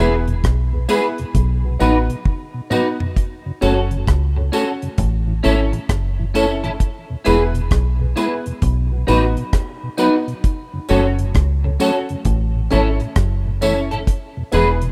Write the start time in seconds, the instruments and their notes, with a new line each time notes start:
Already playing: clean electric guitar E4
0.00 fingered electric bass E1, upright piano B3 E4 G#4 B4, clean electric guitar G#4 B4
0.28 tonewheel organ E2 B2, closed hi-hat
0.44 fingered electric bass B1, kick, cross-stick, closed hi-hat
0.73 tonewheel organ E2 B2, upright piano G#4 B4
0.89 tonewheel organ G#3 B3 E4, upright piano B3 E4 G#4 B4, clean electric guitar E4 G#4 B4, closed hi-hat, tambourine
1.18 tonewheel organ E2 B2, closed hi-hat
1.35 fingered electric bass B1, kick, closed hi-hat
1.64 tonewheel organ B2, upright piano F#4 B4
1.79 fingered electric bass A1, tonewheel organ F#3 B3 D#4, upright piano B3 D#4 F#4 B4, clean electric guitar D#4 F#4 B4, closed hi-hat, tambourine
2.09 tonewheel organ B2, closed hi-hat
2.25 kick, high tom
2.54 tonewheel organ B2
2.70 tonewheel organ F#3 B3 D#4, upright piano B3 D#4 F#4 B4, clean electric guitar D#4 F#4 B4, mid tom, tambourine
3.00 tonewheel organ B2, floor tom
3.16 kick, closed hi-hat
3.46 tonewheel organ F#2 C#3
3.61 fingered electric bass F#1, tonewheel organ A3 C#4 F#4, upright piano C#4 F#4 A4 C#5, clean electric guitar C#4 F#4 A4, closed hi-hat, tambourine
3.91 tonewheel organ F#2 C#3, closed hi-hat
4.07 fingered electric bass C#2, kick, cross-stick, closed hi-hat
4.36 tonewheel organ F#2 C#3, upright piano A4 C#5, muted clean electric guitar stroke
4.52 tonewheel organ A3 C#4 F#4, clean electric guitar C#4 F#4 A4, upright piano C#4 F#4 A4 C#5, closed hi-hat, tambourine
4.82 tonewheel organ F#2 C#3, closed hi-hat
4.98 fingered electric bass A1, kick, closed hi-hat
5.27 tonewheel organ A2 E3
5.43 fingered electric bass G#1, tonewheel organ A3 C#4 E4, clean electric guitar C#4 E4 A4, upright piano C#4 E4 A4 C#5, closed hi-hat, tambourine
5.72 tonewheel organ A2 E3, muted clean electric guitar stroke, closed hi-hat
5.89 fingered electric bass F#1, kick, cross-stick, closed hi-hat
6.19 tonewheel organ A2 E3
6.34 tonewheel organ A3 C#4 E4, clean electric guitar C#4 E4 A4, upright piano C#4 E4 A4 C#5, closed hi-hat, tambourine
6.64 tonewheel organ A2 E3, clean electric guitar C#4 E4 A4, closed hi-hat
6.80 kick, closed hi-hat
7.10 tonewheel organ E2 B2
7.24 fingered electric bass E1, tonewheel organ G#3 B3 E4, upright piano B3 E4 G#4 B4, clean electric guitar E4 G#4 B4, closed hi-hat, tambourine
7.54 tonewheel organ E2 B2, closed hi-hat
7.71 fingered electric bass B1, kick, cross-stick, closed hi-hat
7.99 tonewheel organ E2 B2, upright piano G#4 B4
8.16 tonewheel organ G#3 B3 E4, upright piano B3 E4 G#4 B4, clean electric guitar E4 G#4 B4, closed hi-hat, tambourine
8.46 tonewheel organ E2 B2, closed hi-hat
8.62 fingered electric bass B1, kick, closed hi-hat
8.91 tonewheel organ B2, upright piano F#4 B4
9.07 fingered electric bass A1, tonewheel organ F#3 B3 D#4, upright piano B3 D#4 F#4 B4, clean electric guitar D#4 F#4 B4, closed hi-hat, tambourine
9.37 tonewheel organ B2, closed hi-hat
9.53 kick, cross-stick, closed hi-hat
9.83 tonewheel organ B2
9.97 tonewheel organ F#3 B3 D#4, upright piano B3 D#4 F#4 B4, clean electric guitar D#4 F#4 B4, closed hi-hat, tambourine
10.28 tonewheel organ B2, closed hi-hat
10.44 kick, closed hi-hat
10.74 tonewheel organ F#2 C#3
10.89 fingered electric bass F#1, tonewheel organ F#3 A3 C#4, upright piano C#4 F#4 A4 C#5, clean electric guitar C#4 F#4 A4, closed hi-hat, tambourine
11.19 tonewheel organ F#2 C#3, closed hi-hat
11.34 fingered electric bass C#2, kick, cross-stick, closed hi-hat
11.64 tonewheel organ F#2 C#3, upright piano A4 C#5, muted clean electric guitar stroke
11.79 tonewheel organ F#3 A3 C#4, upright piano C#4 F#4 A4 C#5, clean electric guitar C#4 F#4 A4, closed hi-hat, tambourine
12.09 tonewheel organ F#2 C#3, closed hi-hat
12.25 fingered electric bass A1, kick, closed hi-hat
12.55 tonewheel organ A2
12.70 fingered electric bass G#1, tonewheel organ E3 A3 C#4, upright piano C#4 E4 A4 C#5, clean electric guitar C#4 E4 A4, closed hi-hat, tambourine
13.00 tonewheel organ A2, muted clean electric guitar stroke, closed hi-hat
13.16 fingered electric bass F#1, kick, cross-stick, closed hi-hat
13.45 tonewheel organ A2
13.61 tonewheel organ E3 A3 C#4, upright piano C#4 E4 A4 C#5, clean electric guitar C#4 E4 A4, closed hi-hat, tambourine
13.91 tonewheel organ A2, clean electric guitar C#4 E4 A4, closed hi-hat
14.07 kick, closed hi-hat
14.37 tonewheel organ E2 B2
14.52 fingered electric bass E1, tonewheel organ E3 G#3 B3, upright piano B3 E4 G#4 B4, clean electric guitar E4 G#4 B4, closed hi-hat, tambourine
14.82 tonewheel organ E2 B2, closed hi-hat